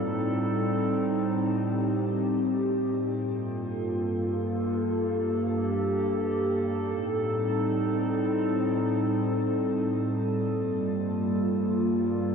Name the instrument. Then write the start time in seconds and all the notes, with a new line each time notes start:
ambient pad
Already playing: A2 G3 C4 D#4 A4
1.37 G4
3.19 G2 A#3 F4 A4
5.01 G4
6.82 A2 G3 C4 D#4
10.46 G2 A#3 F4